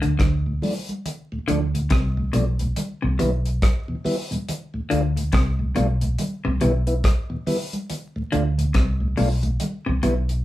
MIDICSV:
0, 0, Header, 1, 5, 480
1, 0, Start_track
1, 0, Tempo, 854701
1, 592, Time_signature, 4, 2, 24, 8
1, 5866, End_track
2, 0, Start_track
2, 0, Title_t, "Clean electric guitar"
2, 0, Program_c, 0, 27
2, 10, Note_on_c, 0, 50, 69
2, 69, Note_off_c, 0, 50, 0
2, 106, Note_on_c, 0, 50, 63
2, 252, Note_off_c, 0, 50, 0
2, 829, Note_on_c, 0, 50, 81
2, 974, Note_off_c, 0, 50, 0
2, 1070, Note_on_c, 0, 48, 81
2, 1215, Note_off_c, 0, 48, 0
2, 1309, Note_on_c, 0, 47, 78
2, 1455, Note_off_c, 0, 47, 0
2, 1698, Note_on_c, 0, 48, 71
2, 1755, Note_off_c, 0, 48, 0
2, 1792, Note_on_c, 0, 47, 69
2, 1937, Note_off_c, 0, 47, 0
2, 2752, Note_on_c, 0, 50, 85
2, 2897, Note_off_c, 0, 50, 0
2, 2994, Note_on_c, 0, 48, 88
2, 3138, Note_off_c, 0, 48, 0
2, 3233, Note_on_c, 0, 47, 78
2, 3378, Note_off_c, 0, 47, 0
2, 3621, Note_on_c, 0, 48, 76
2, 3677, Note_off_c, 0, 48, 0
2, 3714, Note_on_c, 0, 47, 67
2, 3858, Note_off_c, 0, 47, 0
2, 4673, Note_on_c, 0, 50, 80
2, 4817, Note_off_c, 0, 50, 0
2, 4911, Note_on_c, 0, 48, 89
2, 5056, Note_off_c, 0, 48, 0
2, 5153, Note_on_c, 0, 47, 73
2, 5297, Note_off_c, 0, 47, 0
2, 5539, Note_on_c, 0, 48, 69
2, 5596, Note_off_c, 0, 48, 0
2, 5633, Note_on_c, 0, 47, 76
2, 5777, Note_off_c, 0, 47, 0
2, 5866, End_track
3, 0, Start_track
3, 0, Title_t, "Tonewheel organ"
3, 0, Program_c, 1, 16
3, 19, Note_on_c, 1, 38, 53
3, 19, Note_on_c, 1, 45, 58
3, 58, Note_off_c, 1, 38, 0
3, 58, Note_off_c, 1, 45, 0
3, 260, Note_on_c, 1, 45, 53
3, 261, Note_on_c, 1, 38, 54
3, 299, Note_off_c, 1, 38, 0
3, 299, Note_off_c, 1, 45, 0
3, 349, Note_on_c, 1, 53, 73
3, 351, Note_on_c, 1, 57, 63
3, 354, Note_on_c, 1, 62, 78
3, 412, Note_off_c, 1, 53, 0
3, 413, Note_off_c, 1, 57, 0
3, 414, Note_off_c, 1, 62, 0
3, 741, Note_on_c, 1, 38, 55
3, 742, Note_on_c, 1, 45, 53
3, 780, Note_off_c, 1, 38, 0
3, 780, Note_off_c, 1, 45, 0
3, 834, Note_on_c, 1, 53, 77
3, 835, Note_on_c, 1, 57, 72
3, 836, Note_on_c, 1, 62, 86
3, 895, Note_off_c, 1, 53, 0
3, 896, Note_off_c, 1, 57, 0
3, 896, Note_off_c, 1, 62, 0
3, 980, Note_on_c, 1, 38, 55
3, 980, Note_on_c, 1, 45, 56
3, 1019, Note_off_c, 1, 38, 0
3, 1019, Note_off_c, 1, 45, 0
3, 1221, Note_on_c, 1, 38, 58
3, 1221, Note_on_c, 1, 45, 59
3, 1260, Note_off_c, 1, 38, 0
3, 1260, Note_off_c, 1, 45, 0
3, 1313, Note_on_c, 1, 53, 79
3, 1314, Note_on_c, 1, 57, 79
3, 1316, Note_on_c, 1, 62, 92
3, 1375, Note_off_c, 1, 53, 0
3, 1376, Note_off_c, 1, 57, 0
3, 1376, Note_off_c, 1, 62, 0
3, 1463, Note_on_c, 1, 38, 61
3, 1463, Note_on_c, 1, 45, 66
3, 1501, Note_off_c, 1, 38, 0
3, 1501, Note_off_c, 1, 45, 0
3, 1700, Note_on_c, 1, 40, 61
3, 1700, Note_on_c, 1, 47, 62
3, 1740, Note_off_c, 1, 40, 0
3, 1740, Note_off_c, 1, 47, 0
3, 1793, Note_on_c, 1, 55, 72
3, 1794, Note_on_c, 1, 59, 67
3, 1796, Note_on_c, 1, 64, 77
3, 1855, Note_off_c, 1, 55, 0
3, 1856, Note_off_c, 1, 59, 0
3, 1857, Note_off_c, 1, 64, 0
3, 2181, Note_on_c, 1, 40, 61
3, 2181, Note_on_c, 1, 47, 58
3, 2220, Note_off_c, 1, 47, 0
3, 2221, Note_off_c, 1, 40, 0
3, 2272, Note_on_c, 1, 55, 72
3, 2273, Note_on_c, 1, 59, 73
3, 2276, Note_on_c, 1, 64, 93
3, 2335, Note_off_c, 1, 55, 0
3, 2336, Note_off_c, 1, 59, 0
3, 2337, Note_off_c, 1, 64, 0
3, 2420, Note_on_c, 1, 40, 55
3, 2420, Note_on_c, 1, 47, 66
3, 2460, Note_off_c, 1, 40, 0
3, 2460, Note_off_c, 1, 47, 0
3, 2661, Note_on_c, 1, 38, 52
3, 2661, Note_on_c, 1, 45, 57
3, 2700, Note_off_c, 1, 38, 0
3, 2700, Note_off_c, 1, 45, 0
3, 2752, Note_on_c, 1, 57, 71
3, 2754, Note_on_c, 1, 62, 64
3, 2756, Note_on_c, 1, 65, 83
3, 2815, Note_off_c, 1, 57, 0
3, 2816, Note_off_c, 1, 62, 0
3, 2817, Note_off_c, 1, 65, 0
3, 2901, Note_on_c, 1, 38, 55
3, 2903, Note_on_c, 1, 45, 54
3, 2941, Note_off_c, 1, 38, 0
3, 2941, Note_off_c, 1, 45, 0
3, 3140, Note_on_c, 1, 38, 57
3, 3141, Note_on_c, 1, 45, 57
3, 3180, Note_off_c, 1, 38, 0
3, 3180, Note_off_c, 1, 45, 0
3, 3230, Note_on_c, 1, 57, 84
3, 3233, Note_on_c, 1, 62, 69
3, 3234, Note_on_c, 1, 65, 94
3, 3294, Note_off_c, 1, 57, 0
3, 3296, Note_off_c, 1, 62, 0
3, 3296, Note_off_c, 1, 65, 0
3, 3381, Note_on_c, 1, 38, 64
3, 3381, Note_on_c, 1, 45, 64
3, 3420, Note_off_c, 1, 45, 0
3, 3421, Note_off_c, 1, 38, 0
3, 3621, Note_on_c, 1, 40, 65
3, 3622, Note_on_c, 1, 47, 60
3, 3660, Note_off_c, 1, 40, 0
3, 3661, Note_off_c, 1, 47, 0
3, 3712, Note_on_c, 1, 55, 71
3, 3714, Note_on_c, 1, 59, 69
3, 3715, Note_on_c, 1, 64, 91
3, 3775, Note_off_c, 1, 55, 0
3, 3776, Note_off_c, 1, 59, 0
3, 3777, Note_off_c, 1, 64, 0
3, 3857, Note_on_c, 1, 59, 63
3, 3860, Note_on_c, 1, 64, 71
3, 3899, Note_off_c, 1, 59, 0
3, 3900, Note_off_c, 1, 64, 0
3, 4099, Note_on_c, 1, 40, 61
3, 4099, Note_on_c, 1, 47, 59
3, 4139, Note_off_c, 1, 47, 0
3, 4140, Note_off_c, 1, 40, 0
3, 4193, Note_on_c, 1, 55, 82
3, 4194, Note_on_c, 1, 59, 76
3, 4195, Note_on_c, 1, 64, 89
3, 4255, Note_off_c, 1, 55, 0
3, 4256, Note_off_c, 1, 59, 0
3, 4256, Note_off_c, 1, 64, 0
3, 4582, Note_on_c, 1, 38, 59
3, 4582, Note_on_c, 1, 45, 61
3, 4621, Note_off_c, 1, 38, 0
3, 4621, Note_off_c, 1, 45, 0
3, 4673, Note_on_c, 1, 57, 80
3, 4674, Note_on_c, 1, 62, 72
3, 4677, Note_on_c, 1, 65, 86
3, 4735, Note_off_c, 1, 57, 0
3, 4736, Note_off_c, 1, 62, 0
3, 4737, Note_off_c, 1, 65, 0
3, 4819, Note_on_c, 1, 38, 62
3, 4820, Note_on_c, 1, 45, 60
3, 4859, Note_off_c, 1, 38, 0
3, 4860, Note_off_c, 1, 45, 0
3, 5057, Note_on_c, 1, 45, 60
3, 5058, Note_on_c, 1, 38, 57
3, 5098, Note_off_c, 1, 45, 0
3, 5099, Note_off_c, 1, 38, 0
3, 5150, Note_on_c, 1, 57, 86
3, 5152, Note_on_c, 1, 62, 72
3, 5152, Note_on_c, 1, 65, 99
3, 5214, Note_off_c, 1, 57, 0
3, 5214, Note_off_c, 1, 62, 0
3, 5215, Note_off_c, 1, 65, 0
3, 5295, Note_on_c, 1, 38, 62
3, 5297, Note_on_c, 1, 45, 71
3, 5337, Note_off_c, 1, 38, 0
3, 5338, Note_off_c, 1, 45, 0
3, 5538, Note_on_c, 1, 40, 65
3, 5538, Note_on_c, 1, 47, 63
3, 5578, Note_off_c, 1, 40, 0
3, 5579, Note_off_c, 1, 47, 0
3, 5631, Note_on_c, 1, 55, 73
3, 5631, Note_on_c, 1, 59, 71
3, 5633, Note_on_c, 1, 64, 83
3, 5694, Note_off_c, 1, 55, 0
3, 5694, Note_off_c, 1, 59, 0
3, 5695, Note_off_c, 1, 64, 0
3, 5866, End_track
4, 0, Start_track
4, 0, Title_t, "Fingered electric bass"
4, 0, Program_c, 2, 33
4, 27, Note_on_c, 2, 38, 95
4, 106, Note_off_c, 2, 38, 0
4, 115, Note_on_c, 2, 38, 87
4, 329, Note_off_c, 2, 38, 0
4, 843, Note_on_c, 2, 38, 84
4, 1054, Note_off_c, 2, 38, 0
4, 1076, Note_on_c, 2, 36, 105
4, 1290, Note_off_c, 2, 36, 0
4, 1320, Note_on_c, 2, 35, 85
4, 1532, Note_off_c, 2, 35, 0
4, 1708, Note_on_c, 2, 36, 86
4, 1789, Note_off_c, 2, 36, 0
4, 1805, Note_on_c, 2, 35, 90
4, 2015, Note_off_c, 2, 35, 0
4, 2764, Note_on_c, 2, 38, 87
4, 2974, Note_off_c, 2, 38, 0
4, 3001, Note_on_c, 2, 36, 96
4, 3212, Note_off_c, 2, 36, 0
4, 3247, Note_on_c, 2, 35, 94
4, 3456, Note_off_c, 2, 35, 0
4, 3628, Note_on_c, 2, 36, 89
4, 3709, Note_off_c, 2, 36, 0
4, 3725, Note_on_c, 2, 35, 89
4, 3935, Note_off_c, 2, 35, 0
4, 4683, Note_on_c, 2, 38, 92
4, 4894, Note_off_c, 2, 38, 0
4, 4918, Note_on_c, 2, 36, 103
4, 5131, Note_off_c, 2, 36, 0
4, 5162, Note_on_c, 2, 35, 91
4, 5373, Note_off_c, 2, 35, 0
4, 5547, Note_on_c, 2, 36, 89
4, 5627, Note_off_c, 2, 36, 0
4, 5641, Note_on_c, 2, 35, 86
4, 5852, Note_off_c, 2, 35, 0
4, 5866, End_track
5, 0, Start_track
5, 0, Title_t, "Drums"
5, 15, Note_on_c, 9, 42, 45
5, 71, Note_off_c, 9, 42, 0
5, 110, Note_on_c, 9, 42, 91
5, 111, Note_on_c, 9, 36, 97
5, 116, Note_on_c, 9, 37, 122
5, 167, Note_off_c, 9, 36, 0
5, 167, Note_off_c, 9, 42, 0
5, 172, Note_off_c, 9, 37, 0
5, 349, Note_on_c, 9, 63, 70
5, 349, Note_on_c, 9, 64, 69
5, 355, Note_on_c, 9, 46, 78
5, 405, Note_off_c, 9, 63, 0
5, 405, Note_off_c, 9, 64, 0
5, 411, Note_off_c, 9, 46, 0
5, 499, Note_on_c, 9, 63, 49
5, 500, Note_on_c, 9, 42, 54
5, 555, Note_off_c, 9, 63, 0
5, 556, Note_off_c, 9, 42, 0
5, 593, Note_on_c, 9, 42, 83
5, 593, Note_on_c, 9, 64, 66
5, 649, Note_off_c, 9, 42, 0
5, 649, Note_off_c, 9, 64, 0
5, 832, Note_on_c, 9, 64, 72
5, 833, Note_on_c, 9, 42, 69
5, 888, Note_off_c, 9, 64, 0
5, 889, Note_off_c, 9, 42, 0
5, 982, Note_on_c, 9, 42, 59
5, 1038, Note_off_c, 9, 42, 0
5, 1068, Note_on_c, 9, 42, 86
5, 1073, Note_on_c, 9, 36, 105
5, 1076, Note_on_c, 9, 63, 55
5, 1079, Note_on_c, 9, 37, 112
5, 1124, Note_off_c, 9, 42, 0
5, 1129, Note_off_c, 9, 36, 0
5, 1132, Note_off_c, 9, 63, 0
5, 1135, Note_off_c, 9, 37, 0
5, 1310, Note_on_c, 9, 42, 76
5, 1317, Note_on_c, 9, 63, 55
5, 1367, Note_off_c, 9, 42, 0
5, 1373, Note_off_c, 9, 63, 0
5, 1456, Note_on_c, 9, 42, 50
5, 1512, Note_off_c, 9, 42, 0
5, 1552, Note_on_c, 9, 42, 95
5, 1556, Note_on_c, 9, 63, 51
5, 1556, Note_on_c, 9, 64, 71
5, 1608, Note_off_c, 9, 42, 0
5, 1612, Note_off_c, 9, 63, 0
5, 1612, Note_off_c, 9, 64, 0
5, 1793, Note_on_c, 9, 42, 70
5, 1801, Note_on_c, 9, 64, 80
5, 1849, Note_off_c, 9, 42, 0
5, 1857, Note_off_c, 9, 64, 0
5, 1940, Note_on_c, 9, 42, 49
5, 1997, Note_off_c, 9, 42, 0
5, 2034, Note_on_c, 9, 42, 94
5, 2035, Note_on_c, 9, 36, 104
5, 2040, Note_on_c, 9, 37, 115
5, 2090, Note_off_c, 9, 42, 0
5, 2091, Note_off_c, 9, 36, 0
5, 2096, Note_off_c, 9, 37, 0
5, 2275, Note_on_c, 9, 64, 76
5, 2278, Note_on_c, 9, 46, 78
5, 2332, Note_off_c, 9, 64, 0
5, 2334, Note_off_c, 9, 46, 0
5, 2425, Note_on_c, 9, 42, 59
5, 2426, Note_on_c, 9, 63, 51
5, 2481, Note_off_c, 9, 42, 0
5, 2482, Note_off_c, 9, 63, 0
5, 2519, Note_on_c, 9, 42, 90
5, 2522, Note_on_c, 9, 64, 69
5, 2575, Note_off_c, 9, 42, 0
5, 2578, Note_off_c, 9, 64, 0
5, 2755, Note_on_c, 9, 64, 73
5, 2758, Note_on_c, 9, 42, 65
5, 2811, Note_off_c, 9, 64, 0
5, 2814, Note_off_c, 9, 42, 0
5, 2905, Note_on_c, 9, 42, 62
5, 2961, Note_off_c, 9, 42, 0
5, 2990, Note_on_c, 9, 42, 81
5, 2995, Note_on_c, 9, 36, 103
5, 2999, Note_on_c, 9, 63, 55
5, 3001, Note_on_c, 9, 37, 102
5, 3046, Note_off_c, 9, 42, 0
5, 3051, Note_off_c, 9, 36, 0
5, 3055, Note_off_c, 9, 63, 0
5, 3058, Note_off_c, 9, 37, 0
5, 3233, Note_on_c, 9, 42, 71
5, 3238, Note_on_c, 9, 63, 54
5, 3289, Note_off_c, 9, 42, 0
5, 3294, Note_off_c, 9, 63, 0
5, 3377, Note_on_c, 9, 42, 49
5, 3434, Note_off_c, 9, 42, 0
5, 3473, Note_on_c, 9, 42, 84
5, 3478, Note_on_c, 9, 63, 56
5, 3478, Note_on_c, 9, 64, 71
5, 3530, Note_off_c, 9, 42, 0
5, 3535, Note_off_c, 9, 63, 0
5, 3535, Note_off_c, 9, 64, 0
5, 3710, Note_on_c, 9, 42, 70
5, 3719, Note_on_c, 9, 64, 75
5, 3766, Note_off_c, 9, 42, 0
5, 3775, Note_off_c, 9, 64, 0
5, 3858, Note_on_c, 9, 42, 50
5, 3914, Note_off_c, 9, 42, 0
5, 3953, Note_on_c, 9, 42, 103
5, 3954, Note_on_c, 9, 36, 110
5, 3959, Note_on_c, 9, 37, 127
5, 4010, Note_off_c, 9, 36, 0
5, 4010, Note_off_c, 9, 42, 0
5, 4015, Note_off_c, 9, 37, 0
5, 4195, Note_on_c, 9, 64, 80
5, 4196, Note_on_c, 9, 46, 80
5, 4251, Note_off_c, 9, 64, 0
5, 4252, Note_off_c, 9, 46, 0
5, 4343, Note_on_c, 9, 42, 56
5, 4343, Note_on_c, 9, 63, 46
5, 4399, Note_off_c, 9, 42, 0
5, 4399, Note_off_c, 9, 63, 0
5, 4434, Note_on_c, 9, 42, 81
5, 4438, Note_on_c, 9, 64, 67
5, 4490, Note_off_c, 9, 42, 0
5, 4495, Note_off_c, 9, 64, 0
5, 4672, Note_on_c, 9, 64, 73
5, 4675, Note_on_c, 9, 42, 71
5, 4728, Note_off_c, 9, 64, 0
5, 4731, Note_off_c, 9, 42, 0
5, 4822, Note_on_c, 9, 42, 63
5, 4878, Note_off_c, 9, 42, 0
5, 4910, Note_on_c, 9, 42, 85
5, 4914, Note_on_c, 9, 36, 110
5, 4918, Note_on_c, 9, 63, 55
5, 4921, Note_on_c, 9, 37, 107
5, 4966, Note_off_c, 9, 42, 0
5, 4971, Note_off_c, 9, 36, 0
5, 4974, Note_off_c, 9, 63, 0
5, 4977, Note_off_c, 9, 37, 0
5, 5152, Note_on_c, 9, 46, 58
5, 5157, Note_on_c, 9, 63, 54
5, 5208, Note_off_c, 9, 46, 0
5, 5213, Note_off_c, 9, 63, 0
5, 5297, Note_on_c, 9, 42, 51
5, 5353, Note_off_c, 9, 42, 0
5, 5390, Note_on_c, 9, 42, 97
5, 5399, Note_on_c, 9, 63, 49
5, 5399, Note_on_c, 9, 64, 75
5, 5447, Note_off_c, 9, 42, 0
5, 5455, Note_off_c, 9, 63, 0
5, 5455, Note_off_c, 9, 64, 0
5, 5632, Note_on_c, 9, 42, 76
5, 5640, Note_on_c, 9, 64, 70
5, 5688, Note_off_c, 9, 42, 0
5, 5696, Note_off_c, 9, 64, 0
5, 5780, Note_on_c, 9, 42, 53
5, 5836, Note_off_c, 9, 42, 0
5, 5866, End_track
0, 0, End_of_file